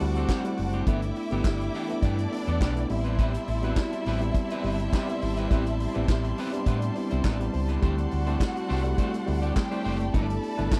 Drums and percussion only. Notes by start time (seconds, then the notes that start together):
0.00 open hi-hat
0.15 closed hi-hat
0.29 kick, snare, clap, closed hi-hat
0.44 closed hi-hat
0.57 open hi-hat
0.73 closed hi-hat
0.87 kick, closed hi-hat
1.02 closed hi-hat
1.16 open hi-hat
1.31 closed hi-hat
1.44 kick, snare, clap, closed hi-hat
1.61 closed hi-hat
1.74 snare, open hi-hat
1.89 closed hi-hat
2.02 kick, closed hi-hat
2.18 closed hi-hat
2.32 open hi-hat
2.47 closed hi-hat
2.61 kick, snare, clap, closed hi-hat
2.77 closed hi-hat
2.89 open hi-hat
3.05 closed hi-hat
3.19 kick, closed hi-hat
3.34 closed hi-hat
3.48 open hi-hat
3.63 closed hi-hat
3.76 kick, snare, clap, closed hi-hat
3.92 closed hi-hat
4.06 snare, open hi-hat
4.21 closed hi-hat
4.34 kick, closed hi-hat
4.50 closed hi-hat
4.64 open hi-hat
4.79 closed hi-hat
4.93 kick, snare, clap, closed hi-hat
5.09 closed hi-hat
5.22 open hi-hat
5.37 closed hi-hat
5.51 kick, closed hi-hat
5.66 closed hi-hat
5.80 open hi-hat
5.95 closed hi-hat
6.08 kick, snare, clap, closed hi-hat
6.25 closed hi-hat
6.38 open hi-hat
6.53 closed hi-hat
6.66 kick, closed hi-hat
6.82 closed hi-hat
6.95 open hi-hat
7.11 closed hi-hat
7.24 kick, snare, clap, closed hi-hat
7.40 closed hi-hat
7.53 open hi-hat
7.68 closed hi-hat
7.82 kick, closed hi-hat
7.98 closed hi-hat
8.11 open hi-hat
8.27 closed hi-hat
8.40 kick, snare, clap, closed hi-hat
8.57 closed hi-hat
8.70 snare, open hi-hat
8.85 closed hi-hat
8.98 kick, closed hi-hat
9.14 closed hi-hat
9.27 open hi-hat
9.43 closed hi-hat
9.56 kick, snare, clap, closed hi-hat
9.72 closed hi-hat
9.85 open hi-hat
10.00 closed hi-hat
10.14 kick, closed hi-hat
10.30 closed hi-hat
10.43 open hi-hat
10.59 closed hi-hat
10.71 kick, snare, clap, closed hi-hat